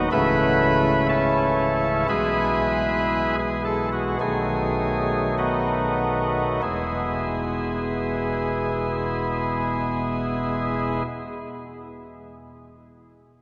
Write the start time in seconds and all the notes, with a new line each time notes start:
0.12 C#1 C#2 C#3 E3 A3 E4 B4
1.09 C#4 E4 A4
2.09 B1 B2 E3 G#3 E4 G#4 B4
3.39 G#4
3.65 A4
3.93 F#4
4.20 B1 B2 D#3 F#3 A3 G#4
5.38 B3 D#4 F#4
6.62 E1 E2 B2 G#3 B3 E4 G#4